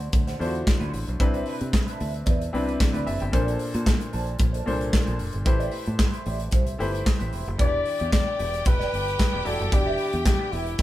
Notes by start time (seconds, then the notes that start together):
Already playing: D3 D4 E4 F#4 C5
0.01 muted clean electric guitar stroke, closed hi-hat
0.12 D2, muted clean electric guitar stroke, kick, closed hi-hat
0.27 D4 F#4 C5, snare, closed hi-hat
0.39 E2 D3 D4 E4 F4 F#4 C5, open hi-hat
0.47 F#4
0.55 muted clean electric guitar stroke, closed hi-hat
0.67 muted clean electric guitar stroke, kick, snare, clap
0.80 D2 D4 F#4 C5, closed hi-hat
0.93 A1, muted clean electric guitar stroke, open hi-hat
1.07 B1, muted clean electric guitar stroke, closed hi-hat
1.20 C2 C3 C4 D4 E4 B4, muted clean electric guitar stroke, kick, closed hi-hat
1.34 D4 E4 C5, closed hi-hat
1.46 D4 E4 B4, open hi-hat
1.60 C3, muted clean electric guitar stroke, closed hi-hat
1.73 muted clean electric guitar stroke, kick, snare, clap
1.87 D4 E4 B4, closed hi-hat
2.00 D2 D4 E4 C5, open hi-hat
2.14 closed hi-hat
2.26 E2 D4 E4 B4, kick, closed hi-hat
2.40 muted clean electric guitar stroke, closed hi-hat
2.53 C2 C3 C4 D4 E4 B4, muted clean electric guitar stroke, open hi-hat
2.67 D4 E4 B4, closed hi-hat
2.80 muted clean electric guitar stroke, kick, snare, clap
2.93 D2 D4 E4 B4 D5, closed hi-hat
3.06 F#1 D4 E4 B4 E5, open hi-hat
3.20 G1 G5, muted clean electric guitar stroke, closed hi-hat
3.32 A#1 A#2 A#3 D4 A4 C5, kick, closed hi-hat
3.48 closed hi-hat
3.59 muted clean electric guitar stroke, open hi-hat
3.74 A#2 D4 A4 C5, closed hi-hat
3.86 muted clean electric guitar stroke, kick, snare, clap
4.00 muted clean electric guitar stroke, closed hi-hat
4.13 A#1 D4 A4 C5, open hi-hat
4.27 muted clean electric guitar stroke, closed hi-hat
4.39 A#1, muted clean electric guitar stroke, kick, closed hi-hat
4.53 D4 A4 C5, closed hi-hat
4.66 C2 A#2 A#3 D4 A4 C5, open hi-hat
4.80 muted clean electric guitar stroke, closed hi-hat
4.92 muted clean electric guitar stroke, kick, snare, clap
5.07 A#1 D4 A4 C5, closed hi-hat
5.19 F1, muted clean electric guitar stroke, open hi-hat
5.33 G1, muted clean electric guitar stroke, closed hi-hat
5.45 A1 A3 E4 G4 B4 C5, muted clean electric guitar stroke, kick, closed hi-hat
5.59 E4 G4 D5, closed hi-hat
5.71 E4 G4 C5, open hi-hat
5.86 A2, muted clean electric guitar stroke, closed hi-hat
5.98 muted clean electric guitar stroke, kick, snare, clap
6.12 E4 G4 C5, closed hi-hat
6.25 A1 E4 G4 D5, open hi-hat
6.40 muted clean electric guitar stroke, closed hi-hat
6.51 C2 E4 G4 C5, kick, closed hi-hat
6.67 muted clean electric guitar stroke, closed hi-hat
6.78 G1 A3 E4 G4 B4 C5, muted clean electric guitar stroke, open hi-hat
6.92 E4 G4 C5, closed hi-hat
7.05 muted clean electric guitar stroke, kick, snare, clap
7.19 A1 E4 G4 C5, closed hi-hat
7.31 E1 E4 G4 C5, open hi-hat
7.46 F#1, muted clean electric guitar stroke, closed hi-hat
7.58 E1 E3 D4 E4 G4 B4 D5 G5, kick, closed hi-hat
7.85 muted clean electric guitar stroke, open hi-hat
7.99 E2 G4 B4 D5, closed hi-hat
8.12 D5, muted clean electric guitar stroke, kick, snare, clap, closed hi-hat
8.26 muted clean electric guitar stroke
8.39 E1 G4 B4 D5, open hi-hat
8.53 muted clean electric guitar stroke, closed hi-hat
8.65 E1 B4, muted clean electric guitar stroke, kick, closed hi-hat
8.79 G4 B4 D5, snare
8.92 G1 G4 B4 D5, open hi-hat
9.06 muted clean electric guitar stroke, closed hi-hat
9.19 muted clean electric guitar stroke, kick, snare, clap, closed hi-hat
9.33 E1 G4 B4 D5
9.45 E1 E3 E4 F#4 G4 A4 D5, muted clean electric guitar stroke, open hi-hat
9.59 F#1, muted clean electric guitar stroke, closed hi-hat
9.72 E1 E3 D4 E4 G4 D5, muted clean electric guitar stroke, kick, closed hi-hat
9.87 G4 B4 E5
9.97 G4 B4 D5, open hi-hat
10.13 E2, muted clean electric guitar stroke, closed hi-hat
10.25 G4, muted clean electric guitar stroke, kick, snare, clap, closed hi-hat
10.39 G4 B4 D5
10.52 E1 E4 G4 B4 E5, open hi-hat
10.66 muted clean electric guitar stroke, closed hi-hat
10.78 G4, kick, closed hi-hat